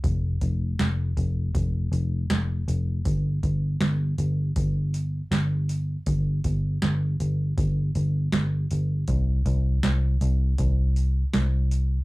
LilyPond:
<<
  \new Staff \with { instrumentName = "Picked electric bass" } { \clef bass \time 4/4 \key f \lydian \tempo 4 = 80 f,,8 f,,8 f,,8 f,,8 f,,8 f,,8 f,,8 f,,8 | g,,8 g,,8 g,,8 g,,8 g,,4 g,,4 | g,,8 g,,8 g,,8 g,,8 g,,8 g,,8 g,,8 g,,8 | c,8 c,8 c,8 c,8 c,4 c,4 | }
  \new DrumStaff \with { instrumentName = "Drums" } \drummode { \time 4/4 <hho bd>8 <hho bd>8 <hho sn>8 <hho bd>8 <hho bd>8 hho8 <hho sn>8 hho8 | <hho bd>8 <hho bd>8 <hho sn>8 hho8 <hho bd>8 hho8 <hho sn>8 hho8 | <hho bd>8 <hho bd>8 <hho sn>8 hho8 <hho bd>8 hho8 <hho sn>8 hho8 | <hho bd>8 <hho bd>8 <hho sn>8 hho8 <hho bd>8 hho8 <hho sn>8 hho8 | }
>>